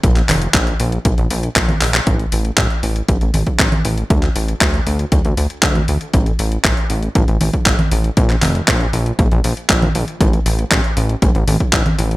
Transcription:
0.03 0.22 A#1 loud
0.03 kick loud
0.03 closed hi-hat loud
0.16 clap soft
0.16 closed hi-hat soft
0.29 0.48 F1 medium
0.29 clap medium
0.29 open hi-hat loud
0.29 high conga medium
0.42 closed hi-hat soft
0.54 0.73 A#1 loud
0.54 kick loud
0.54 clap loud
0.54 closed hi-hat loud
0.67 closed hi-hat soft
0.80 0.99 A#1 loud
0.80 open hi-hat loud
0.92 closed hi-hat soft
1.05 1.15 A#1 medium
1.05 kick loud
1.05 closed hi-hat medium
1.18 1.27 A#1 loud
1.18 closed hi-hat soft
1.30 1.49 A#1 loud
1.30 open hi-hat loud
1.43 closed hi-hat soft
1.56 1.75 A#1 medium
1.56 kick loud
1.56 clap loud
1.56 closed hi-hat loud
1.69 closed hi-hat soft
1.69 high conga medium
1.81 2.00 A#1 medium
1.81 clap medium
1.81 open hi-hat loud
1.94 clap loud
1.94 closed hi-hat soft
2.07 2.26 A1 loud
2.07 kick loud
2.07 closed hi-hat medium
2.19 closed hi-hat soft
2.32 2.51 A1 medium
2.32 open hi-hat loud
2.45 closed hi-hat soft
2.58 2.67 A1 loud
2.58 kick loud
2.58 clap loud
2.58 closed hi-hat loud
2.70 closed hi-hat soft
2.83 3.02 A1 medium
2.83 open hi-hat loud
2.96 closed hi-hat soft
3.08 3.18 A1 loud
3.08 kick loud
3.08 closed hi-hat loud
3.21 3.31 A1 medium
3.21 closed hi-hat soft
3.34 3.43 A1 medium
3.34 open hi-hat loud
3.34 high conga medium
3.47 kick medium
3.47 closed hi-hat soft
3.59 3.69 A1 medium
3.59 kick loud
3.59 clap loud
3.59 closed hi-hat loud
3.72 closed hi-hat soft
3.72 high conga medium
3.85 4.04 A1 medium
3.85 open hi-hat loud
3.98 closed hi-hat soft
4.10 4.29 D2 loud
4.10 kick loud
4.10 closed hi-hat loud
4.23 clap soft
4.23 closed hi-hat soft
4.36 4.54 A1 medium
4.36 open hi-hat loud
4.48 closed hi-hat soft
4.61 4.80 D2 loud
4.61 kick loud
4.61 clap loud
4.61 closed hi-hat medium
4.74 closed hi-hat soft
4.87 5.05 D2 loud
4.87 open hi-hat loud
4.99 closed hi-hat soft
5.12 5.21 D2 medium
5.12 kick loud
5.12 closed hi-hat medium
5.25 5.34 D2 medium
5.25 closed hi-hat soft
5.37 5.47 D2 loud
5.37 open hi-hat loud
5.50 closed hi-hat soft
5.63 5.82 D2 loud
5.63 kick loud
5.63 clap loud
5.63 closed hi-hat loud
5.75 closed hi-hat soft
5.75 high conga medium
5.88 5.98 D2 medium
5.88 open hi-hat loud
6.01 closed hi-hat soft
6.14 6.32 A1 loud
6.14 kick loud
6.14 closed hi-hat medium
6.26 closed hi-hat soft
6.39 6.58 A1 medium
6.39 open hi-hat loud
6.52 closed hi-hat soft
6.64 6.74 A1 loud
6.64 kick loud
6.64 clap loud
6.64 closed hi-hat medium
6.77 closed hi-hat soft
6.90 7.09 A1 medium
6.90 open hi-hat loud
7.03 closed hi-hat soft
7.15 7.25 A1 loud
7.15 kick loud
7.15 closed hi-hat medium
7.28 7.38 A1 medium
7.28 closed hi-hat soft
7.41 7.50 A1 medium
7.41 open hi-hat loud
7.41 high conga medium
7.53 kick medium
7.53 closed hi-hat soft
7.66 7.76 A1 medium
7.66 kick loud
7.66 clap loud
7.66 closed hi-hat loud
7.79 closed hi-hat soft
7.79 high conga medium
7.92 8.10 A1 medium
7.92 open hi-hat loud
8.04 closed hi-hat soft
8.17 8.36 A#1 loud
8.17 kick loud
8.17 closed hi-hat medium
8.30 clap soft
8.30 closed hi-hat soft
8.42 8.61 F1 medium
8.42 clap medium
8.42 open hi-hat loud
8.42 high conga medium
8.55 closed hi-hat soft
8.68 8.87 A#1 loud
8.68 kick loud
8.68 clap loud
8.68 closed hi-hat medium
8.81 closed hi-hat soft
8.93 9.12 A#1 loud
8.93 open hi-hat loud
9.06 closed hi-hat soft
9.19 9.28 A#1 medium
9.19 kick loud
9.19 closed hi-hat medium
9.32 9.41 A#1 loud
9.32 closed hi-hat soft
9.44 9.54 A#1 medium
9.44 open hi-hat loud
9.57 closed hi-hat soft
9.70 9.88 A#1 loud
9.70 kick loud
9.70 clap loud
9.70 closed hi-hat medium
9.82 closed hi-hat soft
9.82 high conga medium
9.95 10.04 A#1 medium
9.95 open hi-hat loud
10.08 closed hi-hat soft
10.21 10.39 A1 loud
10.21 kick loud
10.21 closed hi-hat medium
10.33 closed hi-hat soft
10.46 10.65 A1 medium
10.46 open hi-hat loud
10.59 closed hi-hat soft
10.71 10.81 A1 loud
10.71 kick loud
10.71 clap loud
10.71 closed hi-hat medium
10.84 closed hi-hat soft
10.97 11.16 A1 medium
10.97 open hi-hat loud
11.09 closed hi-hat soft
11.22 11.32 A1 loud
11.22 kick loud
11.22 closed hi-hat medium
11.35 11.44 A1 medium
11.35 closed hi-hat soft
11.48 11.57 A1 medium
11.48 open hi-hat loud
11.48 high conga medium
11.60 kick medium
11.60 closed hi-hat soft
11.73 11.82 A1 medium
11.73 kick loud
11.73 clap loud
11.73 closed hi-hat medium
11.86 closed hi-hat soft
11.86 high conga medium
11.98 12.17 A1 medium
11.98 open hi-hat loud
12.11 closed hi-hat soft

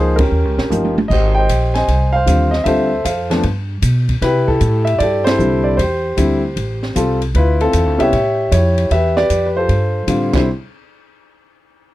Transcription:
0.00 0.30 C#2 medium
0.00 0.16 F3 medium
0.00 0.16 A#3 medium
0.00 0.16 D#4 medium
0.00 0.16 G#4 medium
0.00 0.18 C5 medium
0.16 0.93 C#4 medium
0.16 0.91 A#4 medium
0.16 kick medium
0.16 ride medium
0.20 0.70 G4 medium
0.31 0.45 D#2 medium
0.45 0.57 C#2 medium
0.58 0.70 A#1 medium
0.58 snare soft
0.70 1.09 G1 medium
0.70 0.94 F3 medium
0.70 0.94 A#3 medium
0.70 0.94 D#4 medium
0.70 0.94 G4 medium
0.70 hi-hat pedal soft
0.70 high tom soft
0.85 high tom soft
0.98 high tom medium
1.08 1.48 G#1 medium
1.08 1.33 D#5 medium
1.08 kick medium
1.08 crash medium
1.12 1.85 G4 medium
1.12 1.37 C5 medium
1.35 1.76 D#5 medium
1.35 1.75 G5 loud
1.39 1.76 C5 medium
1.49 1.87 A#1 medium
1.49 kick soft
1.49 hi-hat pedal soft
1.49 ride medium
1.74 2.14 C5 medium
1.74 2.50 D#5 medium
1.74 2.15 G#5 medium
1.74 snare soft
1.74 ride soft
1.88 2.26 C2 medium
1.88 kick soft
1.88 ride soft
2.13 2.63 C5 medium
2.13 2.54 F5 loud
2.26 2.65 D#2 medium
2.26 2.50 D3 medium
2.26 2.50 G3 medium
2.26 2.50 C4 medium
2.26 2.51 F4 medium
2.26 kick soft
2.26 hi-hat pedal medium
2.26 ride medium
2.51 2.66 D#5 medium
2.51 snare soft
2.64 3.04 D2 medium
2.64 2.89 D3 medium
2.64 2.89 G3 medium
2.64 2.89 C4 medium
2.64 2.90 F4 medium
2.64 3.05 A4 medium
2.64 3.06 C5 medium
2.64 3.05 E5 medium
2.64 kick soft
2.64 ride medium
3.05 3.43 F2 medium
3.05 3.42 A4 medium
3.05 3.42 C5 medium
3.05 3.41 F5 medium
3.05 kick soft
3.05 hi-hat pedal medium
3.05 ride medium
3.30 3.42 F3 medium
3.30 3.43 A3 medium
3.30 3.43 B3 medium
3.30 3.43 D4 medium
3.30 snare soft
3.30 ride soft
3.43 3.82 G2 medium
3.43 kick soft
3.43 ride medium
3.82 4.21 B2 medium
3.82 kick soft
3.82 hi-hat pedal medium
3.82 ride medium
4.09 kick soft
4.09 ride soft
4.22 4.60 C3 medium
4.22 4.49 E4 medium
4.22 4.97 G4 medium
4.22 4.46 B4 medium
4.22 kick soft
4.22 snare soft
4.22 ride medium
4.48 5.23 E4 medium
4.48 4.84 A4 medium
4.48 kick soft
4.61 4.99 A2 medium
4.61 kick soft
4.61 hi-hat pedal medium
4.61 ride medium
4.85 4.98 E5 medium
4.85 ride soft
4.99 5.38 G2 medium
4.99 5.75 G4 medium
4.99 5.27 A4 medium
4.99 5.26 D5 loud
4.99 kick soft
4.99 ride medium
5.24 5.66 C5 loud
5.24 snare medium
5.24 ride medium
5.28 5.38 E4 medium
5.28 5.76 A4 medium
5.38 5.77 C2 medium
5.38 5.78 D3 medium
5.38 5.78 G3 medium
5.38 5.78 C4 medium
5.38 5.79 E4 medium
5.38 hi-hat pedal medium
5.64 5.77 D5 medium
5.77 6.16 E2 medium
5.77 6.93 G4 medium
5.77 6.91 C5 medium
5.77 kick soft
5.77 ride medium
6.17 6.56 D2 medium
6.17 6.40 D3 medium
6.17 6.41 G3 medium
6.17 6.41 C4 medium
6.17 6.41 E4 medium
6.17 kick soft
6.17 hi-hat pedal medium
6.17 ride medium
6.56 6.94 A1 medium
6.56 kick soft
6.56 ride medium
6.83 snare soft
6.95 7.33 C2 medium
6.95 7.19 G3 medium
6.95 7.19 C4 medium
6.95 7.19 F4 medium
6.95 7.19 A4 medium
6.95 kick soft
6.95 hi-hat pedal medium
6.95 ride medium
7.22 ride soft
7.34 7.72 D2 medium
7.34 7.97 E4 medium
7.34 7.62 F4 medium
7.34 7.59 B4 medium
7.34 kick soft
7.34 ride medium
7.60 8.11 C4 medium
7.60 8.11 F4 medium
7.60 8.01 A4 loud
7.60 ride soft
7.73 7.86 E2 medium
7.73 kick soft
7.73 hi-hat pedal medium
7.73 ride medium
7.86 7.99 D2 medium
7.98 8.11 C2 medium
7.98 8.11 B3 medium
7.98 8.11 C#4 medium
7.98 8.11 E4 medium
7.98 8.01 G4 medium
7.98 8.54 E5 loud
7.98 ride soft
8.02 8.53 G4 medium
8.02 8.50 C#5 medium
8.13 8.51 A2 medium
8.13 kick soft
8.13 ride medium
8.52 8.90 F2 medium
8.52 8.89 E4 medium
8.52 8.89 G4 medium
8.52 8.88 C#5 medium
8.52 kick soft
8.52 hi-hat pedal medium
8.52 ride medium
8.78 ride soft
8.91 9.29 E2 medium
8.91 9.17 G4 medium
8.91 9.17 B4 medium
8.91 9.15 E5 loud
8.91 kick soft
8.91 ride medium
9.17 9.66 G4 medium
9.17 9.45 B4 medium
9.17 9.47 D5 loud
9.17 snare soft
9.30 9.68 F2 medium
9.30 kick soft
9.30 hi-hat pedal medium
9.30 ride medium
9.46 9.55 B4 medium
9.57 10.07 F4 medium
9.57 10.31 A4 medium
9.57 10.30 C5 medium
9.69 10.07 G2 medium
9.69 kick soft
9.69 ride medium
10.07 10.32 A2 medium
10.07 10.32 D3 medium
10.07 10.33 G3 medium
10.07 10.33 C4 medium
10.07 10.34 F4 medium
10.07 kick soft
10.07 hi-hat pedal soft
10.07 ride medium
10.33 10.45 C2 medium
10.33 10.46 D3 medium
10.33 10.46 G3 medium
10.33 10.46 C4 medium
10.33 10.46 E4 medium
10.33 10.47 C5 medium
10.33 kick medium
10.33 snare medium
10.33 crash medium

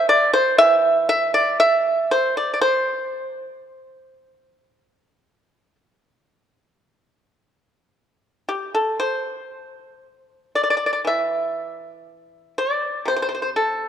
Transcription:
0.09 0.33 D5 loud
0.33 0.58 C5 medium
0.58 3.64 E3 medium
0.58 1.06 E5 loud
1.09 1.34 E5 loud
1.34 1.59 D5 medium
1.60 2.07 E5 loud
2.11 2.35 C5 medium
2.37 2.52 D5 medium
2.54 2.61 D5 medium
2.61 5.75 C5 medium
8.49 8.73 G4 medium
8.75 8.98 A4 medium
9.00 10.51 C5 medium
10.55 10.62 D5 medium
10.63 10.69 D5 soft
10.70 10.76 D5 medium
10.86 10.92 D5 soft
10.93 11.00 D5 soft
11.05 13.88 E3 medium
11.05 12.54 E5 medium
12.58 13.04 D5 medium
13.05 13.88 C3 soft
13.05 13.14 C5 medium
13.16 13.21 C5 medium
13.22 13.28 C5 medium
13.29 13.33 C5 soft
13.35 13.41 C5 soft
13.42 13.49 C5 soft
13.56 13.88 A4 medium

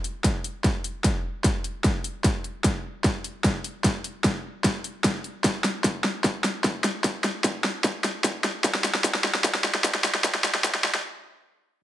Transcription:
0.04 closed hi-hat medium
0.24 kick medium
0.24 snare soft
0.24 closed hi-hat medium
0.44 closed hi-hat medium
0.64 kick loud
0.64 snare medium
0.64 closed hi-hat medium
0.84 closed hi-hat medium
1.04 kick medium
1.04 snare medium
1.04 closed hi-hat medium
1.44 kick medium
1.44 snare medium
1.44 closed hi-hat medium
1.64 closed hi-hat medium
1.84 kick medium
1.84 snare medium
1.84 closed hi-hat medium
2.04 closed hi-hat medium
2.24 kick loud
2.24 snare medium
2.24 closed hi-hat medium
2.44 closed hi-hat medium
2.64 kick medium
2.64 snare medium
2.64 closed hi-hat medium
3.04 kick medium
3.04 snare medium
3.04 closed hi-hat medium
3.24 closed hi-hat medium
3.44 kick loud
3.44 snare medium
3.44 closed hi-hat medium
3.64 closed hi-hat medium
3.84 kick loud
3.84 snare medium
3.84 closed hi-hat medium
4.04 closed hi-hat medium
4.24 kick loud
4.24 snare medium
4.24 closed hi-hat medium
4.64 kick medium
4.64 snare medium
4.64 closed hi-hat medium
4.84 closed hi-hat soft
5.04 kick medium
5.04 snare medium
5.04 closed hi-hat medium
5.24 closed hi-hat soft
5.44 kick loud
5.44 snare medium
5.44 closed hi-hat medium
5.64 snare medium
5.64 closed hi-hat medium
5.84 kick medium
5.84 snare medium
5.84 closed hi-hat medium
6.04 snare medium
6.24 kick loud
6.24 snare medium
6.24 closed hi-hat medium
6.44 snare medium
6.44 closed hi-hat soft
6.64 kick loud
6.64 snare medium
6.64 closed hi-hat medium
6.84 snare medium
6.84 closed hi-hat medium
7.04 kick loud
7.04 snare medium
7.04 closed hi-hat medium
7.24 snare medium
7.24 closed hi-hat medium
7.44 kick loud
7.44 snare medium
7.44 closed hi-hat medium
7.64 snare medium
7.84 kick loud
7.84 snare medium
7.84 closed hi-hat medium
8.04 snare medium
8.04 closed hi-hat medium
8.24 kick medium
8.24 snare medium
8.24 closed hi-hat medium
8.44 snare medium
8.44 closed hi-hat medium
8.64 kick loud
8.64 snare medium
8.64 closed hi-hat medium
8.75 snare medium
8.84 snare medium
8.84 closed hi-hat medium
8.95 snare medium
9.04 kick loud
9.04 snare medium
9.04 closed hi-hat medium
9.15 snare medium
9.24 snare loud
9.35 snare medium
9.44 kick loud
9.44 snare loud
9.44 closed hi-hat medium
9.55 snare medium
9.64 snare loud
9.64 closed hi-hat medium
9.75 snare medium
9.84 kick loud
9.84 snare loud
9.84 closed hi-hat medium
9.95 snare medium
10.04 snare loud
10.04 closed hi-hat medium
10.15 snare medium
10.24 kick loud
10.24 snare loud
10.24 closed hi-hat medium
10.35 snare medium
10.44 snare loud
10.44 closed hi-hat medium
10.55 snare medium
10.64 kick loud
10.64 snare loud
10.64 closed hi-hat medium
10.75 snare medium
10.84 snare loud
10.95 snare medium

